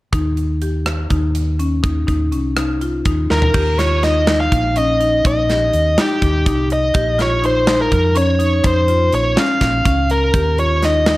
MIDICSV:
0, 0, Header, 1, 5, 480
1, 0, Start_track
1, 0, Tempo, 486224
1, 122, Time_signature, 7, 3, 24, 8
1, 11030, End_track
2, 0, Start_track
2, 0, Title_t, "Lead electric guitar"
2, 0, Program_c, 0, 29
2, 3267, Note_on_c, 0, 70, 70
2, 3741, Note_off_c, 0, 70, 0
2, 3745, Note_on_c, 0, 73, 70
2, 3965, Note_off_c, 0, 73, 0
2, 3985, Note_on_c, 0, 75, 78
2, 4345, Note_off_c, 0, 75, 0
2, 4349, Note_on_c, 0, 77, 71
2, 4714, Note_off_c, 0, 77, 0
2, 4718, Note_on_c, 0, 75, 70
2, 5191, Note_off_c, 0, 75, 0
2, 5203, Note_on_c, 0, 75, 80
2, 5922, Note_on_c, 0, 67, 74
2, 5932, Note_off_c, 0, 75, 0
2, 6590, Note_off_c, 0, 67, 0
2, 6643, Note_on_c, 0, 75, 88
2, 7076, Note_off_c, 0, 75, 0
2, 7126, Note_on_c, 0, 73, 83
2, 7335, Note_off_c, 0, 73, 0
2, 7362, Note_on_c, 0, 72, 84
2, 7684, Note_off_c, 0, 72, 0
2, 7713, Note_on_c, 0, 70, 75
2, 8066, Note_off_c, 0, 70, 0
2, 8070, Note_on_c, 0, 73, 69
2, 8552, Note_off_c, 0, 73, 0
2, 8556, Note_on_c, 0, 72, 91
2, 9026, Note_off_c, 0, 72, 0
2, 9030, Note_on_c, 0, 73, 80
2, 9266, Note_off_c, 0, 73, 0
2, 9270, Note_on_c, 0, 77, 89
2, 9982, Note_on_c, 0, 70, 78
2, 9998, Note_off_c, 0, 77, 0
2, 10459, Note_off_c, 0, 70, 0
2, 10463, Note_on_c, 0, 73, 88
2, 10700, Note_off_c, 0, 73, 0
2, 10709, Note_on_c, 0, 75, 98
2, 11030, Note_off_c, 0, 75, 0
2, 11030, End_track
3, 0, Start_track
3, 0, Title_t, "Marimba"
3, 0, Program_c, 1, 12
3, 124, Note_on_c, 1, 63, 70
3, 432, Note_off_c, 1, 63, 0
3, 610, Note_on_c, 1, 67, 57
3, 917, Note_off_c, 1, 67, 0
3, 1086, Note_on_c, 1, 63, 63
3, 1396, Note_off_c, 1, 63, 0
3, 1573, Note_on_c, 1, 61, 64
3, 1727, Note_off_c, 1, 61, 0
3, 1808, Note_on_c, 1, 63, 62
3, 1963, Note_off_c, 1, 63, 0
3, 2045, Note_on_c, 1, 63, 68
3, 2202, Note_off_c, 1, 63, 0
3, 2291, Note_on_c, 1, 61, 56
3, 2446, Note_off_c, 1, 61, 0
3, 2532, Note_on_c, 1, 63, 69
3, 2687, Note_off_c, 1, 63, 0
3, 2777, Note_on_c, 1, 65, 67
3, 2931, Note_off_c, 1, 65, 0
3, 3018, Note_on_c, 1, 63, 64
3, 3325, Note_off_c, 1, 63, 0
3, 3494, Note_on_c, 1, 67, 78
3, 3649, Note_off_c, 1, 67, 0
3, 3741, Note_on_c, 1, 65, 66
3, 3894, Note_off_c, 1, 65, 0
3, 3977, Note_on_c, 1, 63, 61
3, 4131, Note_off_c, 1, 63, 0
3, 4215, Note_on_c, 1, 63, 78
3, 4523, Note_off_c, 1, 63, 0
3, 4699, Note_on_c, 1, 61, 69
3, 4853, Note_off_c, 1, 61, 0
3, 4941, Note_on_c, 1, 63, 66
3, 5094, Note_off_c, 1, 63, 0
3, 5182, Note_on_c, 1, 63, 72
3, 5334, Note_off_c, 1, 63, 0
3, 5422, Note_on_c, 1, 67, 60
3, 5728, Note_off_c, 1, 67, 0
3, 5901, Note_on_c, 1, 63, 81
3, 6207, Note_off_c, 1, 63, 0
3, 6377, Note_on_c, 1, 63, 68
3, 6683, Note_off_c, 1, 63, 0
3, 6851, Note_on_c, 1, 67, 73
3, 7006, Note_off_c, 1, 67, 0
3, 7092, Note_on_c, 1, 65, 73
3, 7246, Note_off_c, 1, 65, 0
3, 7327, Note_on_c, 1, 63, 66
3, 7483, Note_off_c, 1, 63, 0
3, 7573, Note_on_c, 1, 63, 78
3, 7879, Note_off_c, 1, 63, 0
3, 8046, Note_on_c, 1, 61, 77
3, 8202, Note_off_c, 1, 61, 0
3, 8284, Note_on_c, 1, 63, 68
3, 8440, Note_off_c, 1, 63, 0
3, 8524, Note_on_c, 1, 63, 76
3, 8680, Note_off_c, 1, 63, 0
3, 8767, Note_on_c, 1, 65, 69
3, 9074, Note_off_c, 1, 65, 0
3, 9242, Note_on_c, 1, 61, 87
3, 9550, Note_off_c, 1, 61, 0
3, 9722, Note_on_c, 1, 61, 67
3, 10030, Note_off_c, 1, 61, 0
3, 10203, Note_on_c, 1, 67, 74
3, 10357, Note_off_c, 1, 67, 0
3, 10444, Note_on_c, 1, 65, 64
3, 10597, Note_off_c, 1, 65, 0
3, 10685, Note_on_c, 1, 63, 62
3, 10837, Note_off_c, 1, 63, 0
3, 10919, Note_on_c, 1, 63, 79
3, 11030, Note_off_c, 1, 63, 0
3, 11030, End_track
4, 0, Start_track
4, 0, Title_t, "Fingered electric bass"
4, 0, Program_c, 2, 33
4, 128, Note_on_c, 2, 39, 67
4, 1052, Note_off_c, 2, 39, 0
4, 1087, Note_on_c, 2, 39, 83
4, 1772, Note_off_c, 2, 39, 0
4, 1812, Note_on_c, 2, 39, 72
4, 2032, Note_off_c, 2, 39, 0
4, 2055, Note_on_c, 2, 39, 73
4, 2302, Note_off_c, 2, 39, 0
4, 2302, Note_on_c, 2, 36, 70
4, 2981, Note_off_c, 2, 36, 0
4, 3016, Note_on_c, 2, 39, 72
4, 3235, Note_off_c, 2, 39, 0
4, 3264, Note_on_c, 2, 39, 88
4, 3480, Note_off_c, 2, 39, 0
4, 3499, Note_on_c, 2, 39, 77
4, 4420, Note_off_c, 2, 39, 0
4, 4464, Note_on_c, 2, 34, 83
4, 5142, Note_off_c, 2, 34, 0
4, 5183, Note_on_c, 2, 34, 79
4, 5621, Note_off_c, 2, 34, 0
4, 5661, Note_on_c, 2, 39, 62
4, 5878, Note_off_c, 2, 39, 0
4, 6140, Note_on_c, 2, 39, 82
4, 6357, Note_off_c, 2, 39, 0
4, 6382, Note_on_c, 2, 36, 79
4, 6819, Note_off_c, 2, 36, 0
4, 6859, Note_on_c, 2, 34, 83
4, 7776, Note_off_c, 2, 34, 0
4, 7814, Note_on_c, 2, 41, 85
4, 8493, Note_off_c, 2, 41, 0
4, 8533, Note_on_c, 2, 41, 79
4, 8971, Note_off_c, 2, 41, 0
4, 9012, Note_on_c, 2, 34, 72
4, 9229, Note_off_c, 2, 34, 0
4, 9488, Note_on_c, 2, 34, 76
4, 9706, Note_off_c, 2, 34, 0
4, 9726, Note_on_c, 2, 37, 71
4, 10166, Note_off_c, 2, 37, 0
4, 10206, Note_on_c, 2, 39, 84
4, 11030, Note_off_c, 2, 39, 0
4, 11030, End_track
5, 0, Start_track
5, 0, Title_t, "Drums"
5, 126, Note_on_c, 9, 36, 72
5, 127, Note_on_c, 9, 42, 67
5, 224, Note_off_c, 9, 36, 0
5, 225, Note_off_c, 9, 42, 0
5, 366, Note_on_c, 9, 42, 43
5, 465, Note_off_c, 9, 42, 0
5, 608, Note_on_c, 9, 42, 53
5, 706, Note_off_c, 9, 42, 0
5, 849, Note_on_c, 9, 37, 87
5, 849, Note_on_c, 9, 42, 54
5, 947, Note_off_c, 9, 37, 0
5, 947, Note_off_c, 9, 42, 0
5, 1089, Note_on_c, 9, 42, 48
5, 1090, Note_on_c, 9, 36, 63
5, 1188, Note_off_c, 9, 42, 0
5, 1189, Note_off_c, 9, 36, 0
5, 1332, Note_on_c, 9, 42, 72
5, 1430, Note_off_c, 9, 42, 0
5, 1575, Note_on_c, 9, 42, 53
5, 1674, Note_off_c, 9, 42, 0
5, 1813, Note_on_c, 9, 36, 94
5, 1813, Note_on_c, 9, 42, 64
5, 1912, Note_off_c, 9, 36, 0
5, 1912, Note_off_c, 9, 42, 0
5, 2053, Note_on_c, 9, 42, 46
5, 2054, Note_on_c, 9, 36, 54
5, 2152, Note_off_c, 9, 42, 0
5, 2153, Note_off_c, 9, 36, 0
5, 2293, Note_on_c, 9, 42, 50
5, 2392, Note_off_c, 9, 42, 0
5, 2533, Note_on_c, 9, 37, 83
5, 2533, Note_on_c, 9, 42, 63
5, 2632, Note_off_c, 9, 37, 0
5, 2632, Note_off_c, 9, 42, 0
5, 2778, Note_on_c, 9, 42, 51
5, 2876, Note_off_c, 9, 42, 0
5, 3014, Note_on_c, 9, 42, 62
5, 3017, Note_on_c, 9, 36, 85
5, 3113, Note_off_c, 9, 42, 0
5, 3116, Note_off_c, 9, 36, 0
5, 3260, Note_on_c, 9, 38, 41
5, 3359, Note_off_c, 9, 38, 0
5, 3377, Note_on_c, 9, 43, 65
5, 3475, Note_off_c, 9, 43, 0
5, 3495, Note_on_c, 9, 49, 78
5, 3499, Note_on_c, 9, 36, 100
5, 3594, Note_off_c, 9, 49, 0
5, 3598, Note_off_c, 9, 36, 0
5, 3741, Note_on_c, 9, 38, 27
5, 3741, Note_on_c, 9, 42, 55
5, 3840, Note_off_c, 9, 38, 0
5, 3840, Note_off_c, 9, 42, 0
5, 3980, Note_on_c, 9, 38, 30
5, 3980, Note_on_c, 9, 42, 55
5, 4078, Note_off_c, 9, 38, 0
5, 4078, Note_off_c, 9, 42, 0
5, 4218, Note_on_c, 9, 38, 81
5, 4218, Note_on_c, 9, 42, 69
5, 4317, Note_off_c, 9, 38, 0
5, 4317, Note_off_c, 9, 42, 0
5, 4462, Note_on_c, 9, 36, 70
5, 4463, Note_on_c, 9, 42, 54
5, 4561, Note_off_c, 9, 36, 0
5, 4562, Note_off_c, 9, 42, 0
5, 4697, Note_on_c, 9, 42, 68
5, 4796, Note_off_c, 9, 42, 0
5, 4942, Note_on_c, 9, 42, 53
5, 5041, Note_off_c, 9, 42, 0
5, 5181, Note_on_c, 9, 42, 72
5, 5182, Note_on_c, 9, 36, 91
5, 5280, Note_off_c, 9, 42, 0
5, 5281, Note_off_c, 9, 36, 0
5, 5425, Note_on_c, 9, 38, 29
5, 5425, Note_on_c, 9, 42, 51
5, 5524, Note_off_c, 9, 38, 0
5, 5524, Note_off_c, 9, 42, 0
5, 5661, Note_on_c, 9, 42, 56
5, 5759, Note_off_c, 9, 42, 0
5, 5902, Note_on_c, 9, 38, 78
5, 5902, Note_on_c, 9, 42, 66
5, 6000, Note_off_c, 9, 38, 0
5, 6000, Note_off_c, 9, 42, 0
5, 6139, Note_on_c, 9, 42, 46
5, 6141, Note_on_c, 9, 36, 62
5, 6237, Note_off_c, 9, 42, 0
5, 6240, Note_off_c, 9, 36, 0
5, 6379, Note_on_c, 9, 42, 70
5, 6380, Note_on_c, 9, 36, 90
5, 6478, Note_off_c, 9, 42, 0
5, 6479, Note_off_c, 9, 36, 0
5, 6617, Note_on_c, 9, 42, 56
5, 6715, Note_off_c, 9, 42, 0
5, 6852, Note_on_c, 9, 42, 65
5, 6859, Note_on_c, 9, 36, 101
5, 6951, Note_off_c, 9, 42, 0
5, 6957, Note_off_c, 9, 36, 0
5, 7097, Note_on_c, 9, 38, 31
5, 7097, Note_on_c, 9, 42, 49
5, 7196, Note_off_c, 9, 38, 0
5, 7196, Note_off_c, 9, 42, 0
5, 7341, Note_on_c, 9, 42, 51
5, 7440, Note_off_c, 9, 42, 0
5, 7574, Note_on_c, 9, 38, 92
5, 7574, Note_on_c, 9, 42, 68
5, 7673, Note_off_c, 9, 38, 0
5, 7673, Note_off_c, 9, 42, 0
5, 7814, Note_on_c, 9, 42, 52
5, 7816, Note_on_c, 9, 36, 65
5, 7913, Note_off_c, 9, 42, 0
5, 7915, Note_off_c, 9, 36, 0
5, 8051, Note_on_c, 9, 42, 71
5, 8150, Note_off_c, 9, 42, 0
5, 8290, Note_on_c, 9, 42, 58
5, 8389, Note_off_c, 9, 42, 0
5, 8527, Note_on_c, 9, 42, 76
5, 8532, Note_on_c, 9, 36, 106
5, 8626, Note_off_c, 9, 42, 0
5, 8631, Note_off_c, 9, 36, 0
5, 8768, Note_on_c, 9, 42, 53
5, 8867, Note_off_c, 9, 42, 0
5, 9008, Note_on_c, 9, 42, 56
5, 9107, Note_off_c, 9, 42, 0
5, 9250, Note_on_c, 9, 38, 86
5, 9250, Note_on_c, 9, 42, 70
5, 9349, Note_off_c, 9, 38, 0
5, 9349, Note_off_c, 9, 42, 0
5, 9486, Note_on_c, 9, 38, 31
5, 9486, Note_on_c, 9, 42, 62
5, 9488, Note_on_c, 9, 36, 66
5, 9585, Note_off_c, 9, 38, 0
5, 9585, Note_off_c, 9, 42, 0
5, 9587, Note_off_c, 9, 36, 0
5, 9728, Note_on_c, 9, 36, 94
5, 9730, Note_on_c, 9, 42, 71
5, 9827, Note_off_c, 9, 36, 0
5, 9829, Note_off_c, 9, 42, 0
5, 9967, Note_on_c, 9, 42, 53
5, 10065, Note_off_c, 9, 42, 0
5, 10205, Note_on_c, 9, 42, 73
5, 10206, Note_on_c, 9, 36, 93
5, 10304, Note_off_c, 9, 42, 0
5, 10305, Note_off_c, 9, 36, 0
5, 10448, Note_on_c, 9, 42, 49
5, 10547, Note_off_c, 9, 42, 0
5, 10686, Note_on_c, 9, 38, 27
5, 10686, Note_on_c, 9, 42, 52
5, 10785, Note_off_c, 9, 38, 0
5, 10785, Note_off_c, 9, 42, 0
5, 10922, Note_on_c, 9, 38, 97
5, 10922, Note_on_c, 9, 42, 58
5, 11021, Note_off_c, 9, 38, 0
5, 11021, Note_off_c, 9, 42, 0
5, 11030, End_track
0, 0, End_of_file